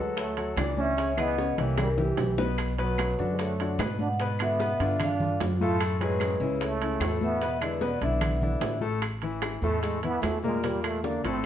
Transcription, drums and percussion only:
0.17 high bongo medium
0.17 high conga soft
0.17 high timbale medium
0.17 maracas medium
0.37 high conga soft
0.37 high timbale medium
0.37 maracas soft
0.57 high bongo medium
0.57 low bongo medium
0.57 high conga medium
0.57 high timbale loud
0.57 low timbale medium
0.57 claves medium
0.57 maracas medium
0.77 high conga medium
0.77 maracas soft
0.97 high bongo medium
0.97 high conga soft
0.97 high timbale medium
0.97 maracas medium
1.17 high bongo soft
1.17 high conga soft
1.17 high timbale medium
1.17 claves medium
1.17 maracas soft
1.38 high bongo medium
1.38 high conga medium
1.38 low timbale medium
1.38 maracas medium
1.58 high bongo soft
1.58 high conga soft
1.58 high timbale medium
1.58 maracas soft
1.78 high bongo loud
1.78 high conga soft
1.78 low conga medium
1.78 high timbale medium
1.78 claves medium
1.78 maracas medium
1.98 low bongo medium
1.98 high conga soft
1.98 low conga medium
1.98 maracas soft
2.17 low bongo medium
2.17 high conga soft
2.17 high timbale medium
2.17 low timbale medium
2.17 maracas medium
2.38 low bongo medium
2.38 high conga medium
2.38 maracas soft
2.58 high bongo medium
2.58 high timbale medium
2.58 claves medium
2.58 maracas medium
2.78 high conga soft
2.78 high timbale medium
2.78 maracas soft
2.98 high bongo medium
2.98 high conga medium
2.98 high timbale loud
2.98 low timbale medium
2.98 claves medium
2.98 maracas medium
3.18 high conga soft
3.18 maracas soft
3.38 high bongo medium
3.38 high conga soft
3.38 high timbale medium
3.38 maracas medium
3.59 high conga soft
3.59 high timbale medium
3.59 maracas soft
3.79 high bongo medium
3.79 low bongo medium
3.79 high conga medium
3.79 high timbale medium
3.79 low timbale medium
3.79 claves medium
3.79 maracas medium
3.99 high conga medium
3.99 maracas soft
4.20 high bongo medium
4.20 high timbale medium
4.20 maracas medium
4.39 high bongo soft
4.39 high conga soft
4.39 high timbale loud
4.39 claves medium
4.39 maracas soft
4.59 high bongo medium
4.59 high conga medium
4.59 low timbale medium
4.59 maracas medium
4.80 high bongo soft
4.80 high conga soft
4.80 high timbale medium
4.80 maracas soft
5.00 high bongo medium
5.00 high conga soft
5.00 low conga medium
5.00 high timbale medium
5.00 claves medium
5.00 maracas medium
5.20 high bongo soft
5.20 high conga soft
5.20 low conga medium
5.20 maracas soft
5.40 high bongo medium
5.40 low bongo medium
5.40 high conga soft
5.40 high timbale medium
5.40 low timbale medium
5.40 maracas medium
5.60 high conga medium
5.60 maracas soft
5.80 high bongo medium
5.80 high conga soft
5.80 high timbale loud
5.80 claves medium
5.80 maracas medium
6.00 high conga soft
6.00 high timbale medium
6.00 maracas soft
6.20 high bongo medium
6.20 high conga medium
6.20 high timbale medium
6.20 low timbale medium
6.20 claves medium
6.20 maracas medium
6.40 high conga soft
6.40 maracas soft
6.60 high bongo medium
6.60 high conga soft
6.60 high timbale medium
6.60 maracas medium
6.80 high conga soft
6.80 high timbale medium
6.80 maracas soft
7.00 high bongo medium
7.00 low bongo medium
7.00 high conga medium
7.00 high timbale loud
7.00 low timbale medium
7.00 claves medium
7.00 maracas medium
7.21 high conga medium
7.21 maracas soft
7.41 high bongo medium
7.41 high conga soft
7.41 high timbale medium
7.41 maracas medium
7.61 high bongo soft
7.61 high conga soft
7.61 high timbale medium
7.61 claves medium
7.61 maracas soft
7.81 high bongo medium
7.81 high conga medium
7.81 low timbale medium
7.81 maracas medium
8.01 high bongo soft
8.01 high conga soft
8.01 high timbale medium
8.01 maracas soft
8.21 high bongo medium
8.21 high conga soft
8.21 low conga medium
8.21 high timbale medium
8.21 claves medium
8.21 maracas medium
8.41 high bongo soft
8.41 high conga soft
8.41 low conga medium
8.41 maracas soft
8.61 high bongo medium
8.61 low bongo medium
8.61 high conga soft
8.61 high timbale medium
8.61 low timbale medium
8.61 maracas medium
8.81 high conga medium
8.81 maracas soft
9.01 high bongo medium
9.01 high conga soft
9.01 high timbale medium
9.01 claves medium
9.01 maracas medium
9.21 high conga soft
9.21 high timbale medium
9.21 maracas soft
9.42 high bongo medium
9.42 high conga medium
9.42 high timbale loud
9.42 low timbale medium
9.42 claves medium
9.42 maracas medium
9.62 high conga soft
9.62 maracas soft
9.83 high bongo medium
9.83 high conga soft
9.83 high timbale medium
9.83 maracas medium
10.03 high conga soft
10.03 high timbale medium
10.03 maracas soft
10.22 high bongo medium
10.22 low bongo medium
10.22 high conga medium
10.22 high timbale medium
10.22 low timbale medium
10.22 claves medium
10.22 maracas medium
10.43 high conga medium
10.43 maracas soft
10.63 high bongo medium
10.63 high conga soft
10.63 high timbale medium
10.63 maracas medium
10.84 high bongo soft
10.84 high conga soft
10.84 high timbale medium
10.84 claves medium
10.84 maracas soft
11.04 high bongo medium
11.04 high conga medium
11.04 low timbale medium
11.04 maracas medium
11.24 high bongo soft
11.24 high conga soft
11.24 high timbale medium
11.24 maracas soft

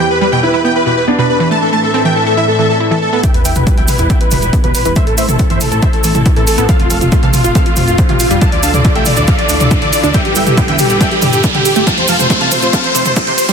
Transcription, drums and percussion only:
3.24 kick loud
3.24 closed hi-hat medium
3.24 cabasa soft
3.34 closed hi-hat soft
3.45 open hi-hat loud
3.45 cabasa medium
3.55 closed hi-hat soft
3.55 mid tom medium
3.55 cabasa soft
3.67 kick loud
3.67 closed hi-hat medium
3.67 cabasa soft
3.78 closed hi-hat soft
3.88 open hi-hat medium
3.88 mid tom medium
3.88 cabasa medium
3.98 closed hi-hat soft
3.98 cabasa soft
4.10 kick loud
4.10 closed hi-hat medium
4.10 cabasa soft
4.21 closed hi-hat soft
4.31 open hi-hat loud
4.31 mid tom medium
4.31 cabasa medium
4.42 closed hi-hat soft
4.42 cabasa soft
4.53 kick loud
4.53 closed hi-hat medium
4.53 cabasa soft
4.64 closed hi-hat soft
4.64 mid tom medium
4.75 open hi-hat medium
4.75 cabasa medium
4.85 closed hi-hat soft
4.85 cabasa medium
4.96 kick loud
4.96 closed hi-hat medium
4.96 cabasa soft
5.07 closed hi-hat soft
5.18 open hi-hat loud
5.18 cabasa medium
5.29 closed hi-hat soft
5.29 mid tom medium
5.29 cabasa medium
5.39 kick loud
5.39 closed hi-hat medium
5.39 cabasa soft
5.50 closed hi-hat soft
5.61 open hi-hat medium
5.61 mid tom medium
5.61 cabasa medium
5.72 closed hi-hat soft
5.72 cabasa medium
5.82 kick loud
5.82 closed hi-hat medium
5.82 cabasa soft
5.93 closed hi-hat soft
6.04 open hi-hat loud
6.04 cabasa medium
6.15 closed hi-hat soft
6.15 mid tom medium
6.15 cabasa medium
6.26 kick loud
6.26 closed hi-hat medium
6.26 cabasa soft
6.36 closed hi-hat soft
6.47 open hi-hat medium
6.47 cabasa medium
6.58 closed hi-hat soft
6.58 cabasa soft
6.69 kick loud
6.69 closed hi-hat medium
6.69 cabasa soft
6.80 closed hi-hat soft
6.90 open hi-hat loud
6.90 cabasa medium
7.01 closed hi-hat soft
7.01 mid tom medium
7.01 cabasa medium
7.12 kick loud
7.12 closed hi-hat medium
7.12 cabasa soft
7.23 closed hi-hat soft
7.33 open hi-hat medium
7.33 mid tom medium
7.33 cabasa medium
7.44 closed hi-hat soft
7.44 cabasa medium
7.55 kick loud
7.55 closed hi-hat medium
7.55 cabasa soft
7.66 closed hi-hat soft
7.76 open hi-hat loud
7.76 mid tom medium
7.76 cabasa loud
7.88 closed hi-hat soft
7.88 cabasa soft
7.98 kick loud
7.98 closed hi-hat medium
7.98 cabasa soft
8.09 closed hi-hat soft
8.09 mid tom medium
8.20 open hi-hat medium
8.20 cabasa medium
8.31 closed hi-hat soft
8.31 cabasa medium
8.41 kick loud
8.41 closed hi-hat medium
8.41 cabasa soft
8.52 closed hi-hat soft
8.63 open hi-hat loud
8.63 cabasa medium
8.74 closed hi-hat soft
8.74 mid tom medium
8.74 cabasa soft
8.85 kick loud
8.85 closed hi-hat medium
8.85 cabasa soft
8.96 closed hi-hat soft
9.05 open hi-hat medium
9.05 mid tom medium
9.05 cabasa medium
9.16 closed hi-hat soft
9.16 cabasa soft
9.27 kick loud
9.27 closed hi-hat medium
9.27 cabasa soft
9.39 closed hi-hat soft
9.49 open hi-hat loud
9.49 cabasa medium
9.60 closed hi-hat soft
9.60 mid tom medium
9.60 cabasa medium
9.71 kick loud
9.71 closed hi-hat medium
9.71 cabasa soft
9.82 closed hi-hat soft
9.93 open hi-hat medium
9.93 cabasa medium
10.04 closed hi-hat soft
10.04 cabasa medium
10.14 kick loud
10.14 closed hi-hat medium
10.14 cabasa soft
10.25 closed hi-hat soft
10.35 open hi-hat loud
10.35 cabasa medium
10.46 closed hi-hat soft
10.46 mid tom medium
10.46 cabasa medium
10.57 kick loud
10.57 closed hi-hat medium
10.57 cabasa soft
10.68 closed hi-hat soft
10.79 open hi-hat medium
10.79 mid tom medium
10.79 cabasa medium
10.90 closed hi-hat soft
10.90 cabasa medium
11.01 kick loud
11.01 closed hi-hat medium
11.01 cabasa soft
11.11 closed hi-hat soft
11.22 open hi-hat loud
11.22 mid tom medium
11.22 cabasa medium
11.33 closed hi-hat soft
11.33 cabasa medium
11.43 kick loud
11.43 closed hi-hat medium
11.43 cabasa soft
11.55 closed hi-hat soft
11.55 mid tom medium
11.65 open hi-hat medium
11.65 cabasa medium
11.76 closed hi-hat soft
11.76 cabasa medium
11.87 kick loud
11.87 closed hi-hat medium
11.87 cabasa soft
11.98 closed hi-hat soft
12.08 open hi-hat loud
12.08 cabasa medium
12.19 closed hi-hat soft
12.19 mid tom medium
12.19 cabasa soft
12.30 kick loud
12.30 closed hi-hat medium
12.30 cabasa soft
12.41 closed hi-hat soft
12.52 open hi-hat medium
12.52 mid tom medium
12.52 cabasa medium
12.62 closed hi-hat soft
12.62 cabasa soft
12.73 kick loud
12.73 closed hi-hat medium
12.73 cabasa soft
12.84 closed hi-hat soft
12.95 open hi-hat loud
12.95 cabasa medium
13.05 closed hi-hat soft
13.05 mid tom medium
13.05 cabasa soft
13.16 kick loud
13.16 closed hi-hat medium
13.16 cabasa soft
13.27 closed hi-hat soft
13.38 open hi-hat medium
13.38 cabasa medium
13.49 closed hi-hat soft
13.49 cabasa soft

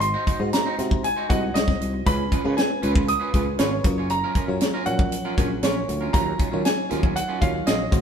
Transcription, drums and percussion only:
0.01 closed hi-hat medium
0.27 kick medium
0.27 closed hi-hat medium
0.53 snare loud
0.53 closed hi-hat medium
0.79 snare soft
0.79 closed hi-hat medium
0.91 kick loud
1.04 closed hi-hat medium
1.30 kick loud
1.30 closed hi-hat medium
1.55 snare loud
1.55 closed hi-hat loud
1.68 kick medium
1.68 snare soft
1.81 closed hi-hat medium
2.06 kick loud
2.06 closed hi-hat medium
2.32 kick loud
2.32 closed hi-hat medium
2.58 snare loud
2.58 closed hi-hat medium
2.83 closed hi-hat medium
2.96 kick loud
3.08 closed hi-hat medium
3.34 kick loud
3.34 closed hi-hat medium
3.59 snare loud
3.59 closed hi-hat loud
3.84 kick loud
3.84 closed hi-hat medium
4.10 closed hi-hat medium
4.35 kick medium
4.35 closed hi-hat medium
4.61 snare loud
4.61 closed hi-hat medium
4.86 closed hi-hat medium
4.99 kick loud
5.12 closed hi-hat medium
5.38 kick loud
5.38 closed hi-hat medium
5.63 snare loud
5.63 closed hi-hat medium
5.89 closed hi-hat medium
6.14 kick loud
6.14 closed hi-hat medium
6.39 kick loud
6.39 closed hi-hat medium
6.65 snare loud
6.65 closed hi-hat medium
6.65 tambourine medium
6.91 snare soft
6.91 closed hi-hat medium
7.03 kick loud
7.16 closed hi-hat loud
7.42 kick medium
7.42 closed hi-hat medium
7.67 snare loud
7.67 closed hi-hat loud
7.67 tambourine medium
7.92 kick loud
7.92 closed hi-hat medium

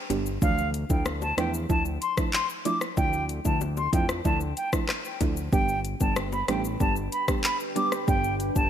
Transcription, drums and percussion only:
0.10 closed hi-hat medium
0.10 high bongo medium
0.10 low bongo medium
0.10 shaker medium
0.26 shaker medium
0.42 kick loud
0.42 shaker medium
0.58 shaker medium
0.74 closed hi-hat medium
0.74 shaker soft
0.90 kick medium
0.90 shaker medium
1.06 cross-stick loud
1.06 high bongo medium
1.06 shaker medium
1.22 high bongo medium
1.22 shaker medium
1.38 cross-stick loud
1.38 closed hi-hat medium
1.38 shaker soft
1.54 shaker medium
1.70 kick medium
1.70 shaker medium
1.85 shaker medium
2.02 closed hi-hat medium
2.02 shaker medium
2.17 kick loud
2.17 cross-stick loud
2.17 shaker medium
2.33 clap loud
2.33 shaker medium
2.49 shaker medium
2.65 closed hi-hat medium
2.65 high bongo medium
2.65 low bongo medium
2.65 shaker medium
2.81 cross-stick medium
2.81 shaker medium
2.97 kick loud
2.97 shaker medium
3.13 shaker medium
3.29 closed hi-hat medium
3.29 shaker soft
3.45 kick medium
3.45 shaker medium
3.61 high bongo medium
3.61 shaker medium
3.77 high bongo medium
3.77 shaker medium
3.93 kick loud
3.93 closed hi-hat medium
3.93 shaker soft
4.09 cross-stick loud
4.09 shaker medium
4.25 kick medium
4.25 shaker medium
4.41 shaker medium
4.57 closed hi-hat medium
4.57 shaker medium
4.73 kick loud
4.73 cross-stick loud
4.73 shaker medium
4.89 cross-stick loud
4.89 clap medium
4.89 shaker medium
5.05 shaker medium
5.21 kick loud
5.21 closed hi-hat medium
5.21 high bongo medium
5.21 low bongo medium
5.21 shaker medium
5.37 shaker medium
5.53 kick loud
5.53 shaker medium
5.69 shaker medium
5.85 closed hi-hat medium
5.85 shaker soft
6.00 kick medium
6.00 shaker medium
6.16 cross-stick loud
6.16 high bongo medium
6.16 shaker medium
6.32 high bongo medium
6.32 shaker medium
6.48 cross-stick loud
6.48 closed hi-hat medium
6.48 shaker soft
6.65 shaker medium
6.80 kick loud
6.80 shaker medium
6.96 shaker medium
7.12 closed hi-hat medium
7.12 shaker medium
7.28 kick loud
7.28 cross-stick loud
7.28 shaker medium
7.44 clap loud
7.44 shaker medium
7.60 shaker medium
7.76 closed hi-hat medium
7.76 high bongo medium
7.76 low bongo medium
7.76 shaker medium
7.92 cross-stick medium
7.92 shaker medium
8.08 kick loud
8.08 shaker medium
8.24 shaker medium
8.40 closed hi-hat medium
8.40 shaker soft
8.56 kick medium
8.56 shaker medium

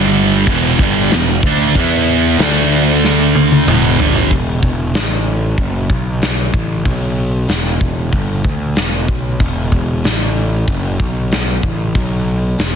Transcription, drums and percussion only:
0.47 kick loud
0.47 crash medium
0.79 kick loud
1.11 snare loud
1.11 crash medium
1.43 kick loud
1.75 kick loud
1.75 crash medium
2.39 snare loud
2.39 crash medium
3.05 snare medium
3.35 high tom medium
3.52 high tom medium
3.68 mid tom medium
3.99 floor tom loud
4.16 floor tom medium
4.31 kick loud
4.31 open hi-hat soft
4.63 kick medium
4.94 snare loud
4.94 open hi-hat medium
5.58 kick loud
5.58 open hi-hat soft
5.90 kick medium
6.22 snare loud
6.22 open hi-hat medium
6.54 kick loud
6.85 kick loud
6.85 open hi-hat medium
7.48 snare loud
7.48 open hi-hat medium
7.81 kick medium
8.12 kick loud
8.12 open hi-hat medium
8.44 kick loud
8.76 snare loud
8.76 open hi-hat soft
9.08 kick loud
9.40 kick loud
9.40 open hi-hat medium
9.72 kick medium
10.04 snare loud
10.04 open hi-hat medium
10.68 kick loud
10.68 open hi-hat soft
11.00 kick medium
11.31 snare loud
11.31 open hi-hat medium
11.63 kick loud
11.95 kick loud
11.95 open hi-hat medium
12.59 snare loud
12.59 open hi-hat medium

